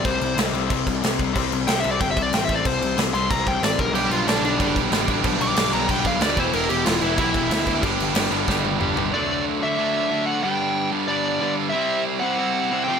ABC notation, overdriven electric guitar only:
X:1
M:4/4
L:1/8
Q:1/4=185
K:G
V:1 name="Overdriven electric guitar" clef=bass
[C,G,C]2 [C,G,C] [C,G,C] [C,G,C]2 [C,G,C] [C,G,C] | [C,G,C]2 [C,G,C] [C,G,C] [C,G,C]2 [C,G,C] [C,G,C] | [C,G,C]2 [C,G,C] [C,G,C] [C,G,C]2 [C,G,C] [G,,D,G,] | [G,,D,G,]2 [G,,D,G,] [G,,D,G,] [G,,D,G,]2 [G,,D,G,] [G,,D,G,] |
[G,,D,G,]2 [G,,D,G,] [G,,D,G,] [G,,D,G,]2 [G,,D,G,] [E,,B,,E,] | [E,,B,,E,]2 [E,,B,,E,] [E,,B,,E,] [E,,B,,E,]2 [E,,B,,E,] [E,,B,,E,] | [G,,D,G,]2 [G,,D,G,] [G,,D,G,] [G,,D,G,]2 [G,,D,G,] [G,,D,G,] | [D,A,D]3 [D,A,D]3 [D,A,D]2 |
[G,,D,G,]3 [G,,D,G,]3 [G,,D,G,]2 | [C,G,C]3 [C,G,C]3 [C,G,C] [=F,,C,=F,] |]